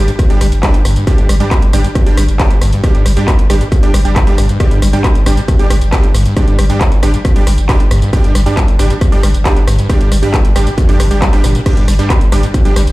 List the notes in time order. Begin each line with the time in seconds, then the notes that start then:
0.08 G2, closed hi-hat, tambourine
0.19 F2, kick, cross-stick, closed hi-hat, tambourine
0.30 G1 G3 D4 G4, closed hi-hat, tambourine
0.41 G1 G3, cross-stick, open hi-hat, tambourine
0.52 G1, closed hi-hat, tambourine
0.63 A#2 G3 D4 G4, kick, cross-stick, clap, closed hi-hat, tambourine
0.74 G1, closed hi-hat, tambourine
0.85 G1 G2, cross-stick, open hi-hat, tambourine
0.96 G2, closed hi-hat, tambourine
1.07 G2 G3 D4 G4, kick, cross-stick, closed hi-hat, tambourine
1.18 G1 G2, closed hi-hat, tambourine
1.29 G1 G3, cross-stick, open hi-hat, tambourine
1.40 G2 G3 D4 G4, closed hi-hat, tambourine
1.51 G1, kick, cross-stick, clap, closed hi-hat, tambourine
1.62 G1, closed hi-hat, tambourine
1.73 G1 G2 G3 D4 G4, cross-stick, open hi-hat, tambourine
1.84 G2, closed hi-hat, tambourine
1.95 F2, kick, cross-stick, closed hi-hat, tambourine
2.06 G1 G3 D4 G4, closed hi-hat, tambourine
2.17 G1 G3, cross-stick, open hi-hat, tambourine
2.28 G1, closed hi-hat, tambourine
2.40 A#2 G3 D4 G4, kick, cross-stick, clap, closed hi-hat, tambourine
2.51 G1, closed hi-hat, tambourine
2.61 G1 G2, cross-stick, open hi-hat, tambourine
2.73 G2, closed hi-hat, tambourine
2.84 G2 G3 D4 G4, kick, cross-stick, closed hi-hat, tambourine
2.95 G1 G2, closed hi-hat, tambourine
3.06 G1 G3, cross-stick, open hi-hat, tambourine
3.17 G2 G3 D4 G4, closed hi-hat, tambourine
3.28 G1, kick, cross-stick, clap, closed hi-hat, tambourine
3.39 G1, closed hi-hat, tambourine
3.50 G1 G2 G3 D4 G4, cross-stick, open hi-hat, tambourine
3.61 G2, closed hi-hat, tambourine
3.72 F2, kick, cross-stick, closed hi-hat, tambourine
3.83 G1 G3 D4 G4, closed hi-hat, tambourine
3.94 G1 G3, cross-stick, open hi-hat, tambourine
4.05 G1 G3 D4 G4, closed hi-hat, tambourine
4.16 A#2, kick, cross-stick, clap, closed hi-hat, tambourine
4.27 G1 G3 D4 G4, closed hi-hat, tambourine
4.38 G1 G2, cross-stick, open hi-hat, tambourine
4.49 G2, closed hi-hat, tambourine
4.60 G2 G3 D4 G4, kick, cross-stick, closed hi-hat, tambourine
4.71 G1 G2, closed hi-hat, tambourine
4.82 G1 G3, cross-stick, open hi-hat, tambourine
4.93 G2 G3 D4 G4, closed hi-hat, tambourine
5.04 G1, kick, cross-stick, clap, closed hi-hat, tambourine
5.15 G1, closed hi-hat, tambourine
5.26 G1 G2 G3 D4 G4, cross-stick, open hi-hat, tambourine
5.37 G2, closed hi-hat, tambourine
5.48 F2, kick, cross-stick, closed hi-hat, tambourine
5.59 G1 G3 D4 G4, closed hi-hat, tambourine
5.70 G1 G3, cross-stick, open hi-hat, tambourine
5.81 G1, closed hi-hat, tambourine
5.92 A#2 G3 D4 G4, kick, cross-stick, clap, closed hi-hat, tambourine
6.04 G1, closed hi-hat, tambourine
6.14 G1 G2, cross-stick, open hi-hat, tambourine
6.26 G2, closed hi-hat, tambourine
6.37 G3 D4 G4, kick, cross-stick, closed hi-hat, tambourine
6.48 G1 G2, closed hi-hat, tambourine
6.59 G1 G3, cross-stick, open hi-hat, tambourine
6.70 G2 G3 D4 G4, closed hi-hat, tambourine
6.81 G1, kick, cross-stick, clap, closed hi-hat, tambourine
6.92 G1, closed hi-hat, tambourine
7.03 G1 G2 G3 D4 G4, cross-stick, open hi-hat, tambourine
7.14 G2, closed hi-hat, tambourine
7.25 F2, kick, cross-stick, closed hi-hat, tambourine
7.36 G1 G3 D4 G4, closed hi-hat, tambourine
7.47 G1 G3, cross-stick, open hi-hat, tambourine
7.58 G1, closed hi-hat, tambourine
7.69 A#2 G3 D4 G4, kick, cross-stick, clap, closed hi-hat, tambourine
7.80 G1, closed hi-hat, tambourine
7.91 G1 G2, cross-stick, open hi-hat, tambourine
8.02 G2, closed hi-hat, tambourine
8.13 G2 G3 D4 G4, kick, cross-stick, closed hi-hat, tambourine
8.24 G1 G2, closed hi-hat, tambourine
8.35 G1 G3, cross-stick, open hi-hat, tambourine
8.46 G2 G3 D4 G4, closed hi-hat, tambourine
8.57 G1, kick, cross-stick, clap, closed hi-hat, tambourine
8.68 G1, closed hi-hat, tambourine
8.79 G1 G2 G3 D4 G4, cross-stick, open hi-hat, tambourine
8.90 G2, closed hi-hat, tambourine
9.01 F2, kick, cross-stick, closed hi-hat, tambourine
9.12 G1 G3 D4 G4, closed hi-hat, tambourine
9.23 G1 G3, cross-stick, open hi-hat, tambourine
9.34 G1, closed hi-hat, tambourine
9.45 A#2 G3 D4 G4, kick, cross-stick, clap, closed hi-hat, tambourine
9.56 G1, closed hi-hat, tambourine
9.67 G1 G2, cross-stick, open hi-hat, tambourine
9.79 G2, closed hi-hat, tambourine
9.90 G2 G3 D4 G4, kick, cross-stick, closed hi-hat, tambourine
10.01 G1 G2, closed hi-hat, tambourine
10.12 G1 G3, cross-stick, open hi-hat, tambourine
10.23 G2 G3 D4 G4, closed hi-hat, tambourine
10.34 G1, kick, cross-stick, clap, closed hi-hat, tambourine
10.45 G1, closed hi-hat, tambourine
10.56 G1 G2 G3 D4 G4, cross-stick, open hi-hat, tambourine
10.67 G2, closed hi-hat, tambourine
10.78 F2, kick, cross-stick, closed hi-hat, tambourine
10.89 G1 G3 D4 G4, closed hi-hat, tambourine
11.00 G1 G2, cross-stick, open hi-hat, tambourine
11.11 G1 G3 D4 G4, closed hi-hat, tambourine
11.22 G3, kick, cross-stick, clap, closed hi-hat, tambourine
11.33 G1 G3 D4 G4, closed hi-hat, tambourine
11.44 G1 A#2, cross-stick, open hi-hat, tambourine
11.55 A#2, closed hi-hat, tambourine
11.66 G2 G3 D4 G4, kick, cross-stick, closed hi-hat, tambourine, crash
11.77 G1 G2, closed hi-hat, tambourine
11.88 G1 G3, cross-stick, open hi-hat, tambourine
11.99 G2 G3 D4 G4, closed hi-hat, tambourine
12.10 G1, kick, cross-stick, clap, closed hi-hat, tambourine
12.21 G1, closed hi-hat, tambourine
12.32 G1 G2 G3 D4 G4, cross-stick, open hi-hat, tambourine
12.43 G2, closed hi-hat, tambourine
12.54 F2, kick, cross-stick, closed hi-hat, tambourine
12.65 G1 G3 D4 G4, closed hi-hat, tambourine
12.76 G1 G3, cross-stick, open hi-hat, tambourine
12.87 G1, closed hi-hat, tambourine